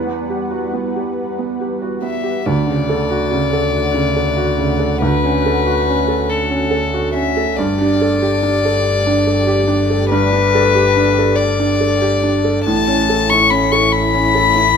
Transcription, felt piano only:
0.00 2.43 E2 soft
0.00 2.00 B4 soft
0.07 0.42 B3 soft
0.30 0.64 G4 soft
0.51 0.85 F#4 soft
0.73 1.08 B3 soft
0.96 1.59 G4 soft
1.38 1.73 B3 soft
1.60 1.95 G4 soft
1.82 2.16 F#4 soft
2.02 2.37 B3 soft
2.24 2.46 G4 soft
2.46 4.98 D2 medium
2.67 3.01 C#3 soft
2.89 3.23 A4 soft
3.10 3.44 F#4 soft
3.31 3.66 C#3 soft
3.53 4.15 A4 soft
3.94 4.29 C#3 soft
4.16 4.51 A4 soft
4.37 4.72 F#4 soft
4.58 4.93 C#3 soft
4.79 5.14 A4 soft
5.02 7.53 D2 medium
5.24 5.58 C#4 soft
5.46 5.79 A4 soft
5.67 6.00 F#4 soft
5.88 6.21 C#4 soft
6.08 6.69 A4 soft
6.50 6.84 C#4 soft
6.71 7.05 A4 soft
6.93 7.27 F#4 soft
7.14 7.48 C#4 soft
7.37 7.57 A4 soft
7.59 10.06 G2 medium
7.81 8.13 D4 soft
8.01 8.34 A4 medium
8.22 8.55 G4 soft
8.43 8.76 D4 soft
8.65 9.25 A4 soft
9.06 9.39 D4 soft
9.27 9.60 A4 soft
9.47 9.80 G4 soft
9.68 10.01 D4 soft
9.90 10.23 A4 medium
10.12 12.62 G2 medium
10.33 10.65 D4 soft
10.55 10.87 A4 medium
10.75 11.07 G4 soft
10.96 11.28 D4 medium
11.18 11.79 A4 medium
11.59 11.92 D4 medium
11.80 12.14 A4 medium
12.02 12.35 G4 medium
12.23 12.57 D4 soft
12.44 12.65 A4 medium
12.67 14.77 A2 medium
12.88 13.21 C#4 soft
13.09 13.42 A4 medium
13.31 13.64 E4 medium
13.51 13.84 C#4 medium
13.72 14.33 A4 soft
14.14 14.47 C#4 soft
14.35 14.68 A4 soft
14.55 14.77 E4 soft

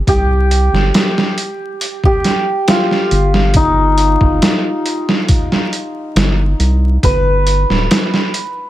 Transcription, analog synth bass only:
0.08 0.69 C2 loud
0.72 0.91 G1 medium
3.11 4.17 G1 loud
4.21 4.40 G1 medium
6.16 6.54 G1 loud
6.59 6.98 C2 loud
7.04 7.65 G1 loud
7.70 7.88 D1 medium

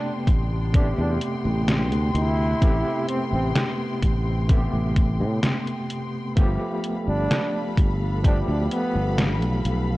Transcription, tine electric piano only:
0.00 0.68 C3 loud
0.00 0.69 A3 medium
0.00 0.69 B3 medium
0.00 0.70 G4 loud
0.73 2.56 C3 medium
0.73 2.56 A3 medium
0.73 2.57 B3 medium
0.73 2.57 G4 loud
2.61 4.44 C3 medium
2.61 4.44 A3 medium
2.61 4.44 B3 medium
2.61 4.45 G4 loud
4.48 6.31 C3 medium
4.48 6.31 A3 medium
4.48 6.32 B3 medium
4.48 6.32 G4 loud
6.36 8.18 F3 medium
6.36 8.19 A3 medium
6.36 8.19 B3 medium
6.36 8.20 G4 loud
8.22 9.97 F3 medium
8.22 9.97 A3 medium
8.22 9.97 B3 medium
8.22 9.97 G4 loud

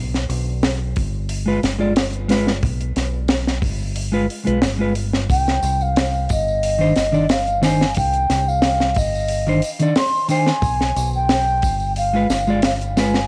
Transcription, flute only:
5.31 5.84 G5 medium
5.82 6.30 F5 medium
6.31 7.33 D#5 loud
7.31 7.63 F5 medium
7.63 7.94 G#5 medium
7.97 8.49 G5 loud
8.48 8.99 F5 loud
8.97 9.70 D#5 loud
9.97 10.28 C6 loud
10.30 11.10 G#5 loud
11.15 11.93 G5 loud
11.98 12.60 F5 medium
12.65 12.72 F5 medium
12.98 13.27 G#5 loud

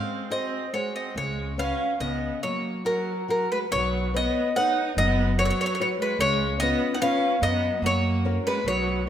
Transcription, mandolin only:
0.00 0.28 F5 medium
0.32 0.71 D#5 medium
0.74 0.94 C#5 medium
0.96 1.15 D#5 medium
1.18 1.56 C#5 medium
1.59 1.99 F5 medium
2.00 2.43 D#5 medium
2.43 2.83 C#5 medium
2.86 3.27 A#4 medium
3.30 3.51 A#4 medium
3.52 3.57 B4 medium
3.72 4.16 C#5 medium
4.17 4.54 D#5 medium
4.56 4.99 F#5 medium
4.98 5.38 D#5 medium
5.39 5.44 C#5 medium
5.45 5.49 C#5 medium
5.50 5.59 C#5 medium
5.61 5.65 C#5 medium
5.66 5.73 C#5 medium
5.75 5.80 C#5 medium
5.82 5.89 C#5 medium
6.02 6.20 B4 medium
6.21 6.58 C#5 medium
6.60 6.96 D#5 medium
6.94 7.01 F#5 medium
7.02 7.44 F5 medium
7.43 7.81 D#5 medium
7.86 8.43 C#5 medium
8.47 8.66 B4 medium
8.68 9.06 C#5 medium

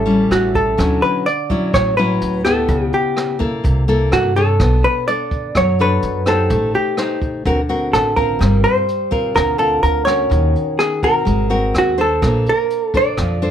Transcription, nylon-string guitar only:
0.00 0.75 A2 medium
0.06 0.74 G3 medium
0.06 0.74 C#4 medium
0.06 0.74 E4 medium
0.77 1.71 D3 medium
0.77 1.25 F#3 soft
0.77 1.26 C#4 medium
0.77 1.26 E4 medium
1.50 1.94 F#3 medium
1.50 1.94 C#4 medium
1.50 1.94 E4 medium
1.74 2.67 A2 medium
1.98 2.42 F#3 medium
1.98 2.42 C#4 medium
1.98 2.42 E4 medium
2.46 3.37 B3 medium
2.46 3.37 E4 medium
2.46 3.37 G4 medium
2.68 3.62 C#3 medium
3.39 3.84 A#3 medium
3.39 3.84 E4 medium
3.39 3.84 A4 medium
3.64 4.57 C3 medium
3.88 4.32 A#3 medium
3.88 4.32 E4 medium
3.88 4.32 A4 medium
4.37 5.07 D4 medium
4.37 5.08 A4 medium
4.37 5.28 C#5 medium
4.61 5.53 B3 soft
5.09 5.76 D4 medium
5.09 5.76 A4 medium
5.56 6.48 F#3 medium
5.80 6.23 D4 medium
5.80 6.23 A4 medium
5.80 6.24 C#5 medium
6.26 6.94 D#4 medium
6.26 6.94 G4 soft
6.26 6.94 C5 medium
6.51 7.44 A3 medium
6.98 7.44 D#4 medium
6.98 7.44 G4 medium
6.98 7.44 C5 medium
7.45 8.39 D3 medium
7.45 7.60 C4 medium
7.45 7.60 F#4 medium
7.45 7.60 A#4 medium
7.69 8.13 C4 medium
7.69 8.13 F#4 medium
7.69 8.13 A#4 medium
8.16 8.84 C4 medium
8.16 8.85 F4 medium
8.16 8.85 A#4 medium
8.39 9.33 G3 medium
9.11 9.55 C4 medium
9.11 9.56 F4 medium
9.11 9.56 A#4 medium
9.35 10.28 D3 medium
9.58 10.03 C4 medium
9.58 10.03 F4 medium
9.58 10.03 A#4 medium
10.06 10.98 C#4 medium
10.06 10.99 F#4 medium
10.06 10.99 A#4 medium
10.30 11.23 D#3 medium
11.03 11.47 C4 medium
11.03 11.47 F#4 medium
11.03 11.47 A#4 medium
11.25 12.19 G#3 medium
11.50 11.94 C4 medium
11.50 11.94 F#4 medium
11.50 11.94 A#4 medium
11.98 12.90 D4 medium
11.98 12.90 C5 medium
12.22 13.15 A#3 medium
12.94 13.38 D4 medium
12.94 13.38 A4 medium
12.94 13.38 C5 medium
13.18 13.51 F3 medium
13.42 13.51 D4 medium
13.42 13.51 A4 medium
13.42 13.51 C5 medium

